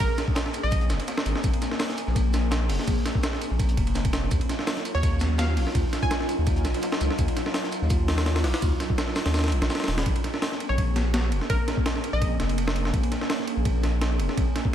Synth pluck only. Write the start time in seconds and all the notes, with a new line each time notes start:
0.00 A#4
0.63 D#5
4.95 C#5
5.39 F5
6.03 G#5
10.69 C#5
11.50 A#4
12.13 D#5